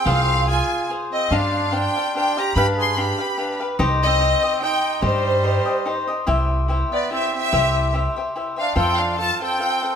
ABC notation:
X:1
M:3/4
L:1/8
Q:"Swing" 1/4=145
K:Cm
V:1 name="Violin section"
f2 a2 z e | f2 g2 g b | =b c' b3 z | z e3 g2 |
c4- c z | [K:C] z3 d e e- | e2 z3 f | g f a g3 |]
V:2 name="Cavaquinho"
[FAcf]2 [FAcf]2 [FAcf]2 | [DGcf]2 [DGcf] [Gcf] [DGcf] [Gcf] | [DG=Bf]2 [DGBf] [GBf] [DGBf] [GBf] | [EGce]2 [EGce] [Gce] [EGce]2 |
[EGce]2 [EGce] [Gce] [EGce] [Gce] | [K:C] [EGce]2 [EGce] [Gce] [EGce]2 | [EGce]2 [EGce] [Gce] [EGce] [Gce] | [FAcf]2 [FAcf] [Acf] [FAcf] [Acf] |]
V:3 name="Trumpet"
C2 F2 z C | D2 D2 D G | G A G3 z | z C3 E2 |
G,4- G, z | [K:C] z3 B, C C- | C2 z3 D | C D F C3 |]
V:4 name="Upright bass" clef=bass
C,,4 z2 | G,,4 z2 | G,,4 z2 | C,,4 z2 |
G,,4 z2 | [K:C] C,,4 z2 | C,,4 z2 | F,,4 z2 |]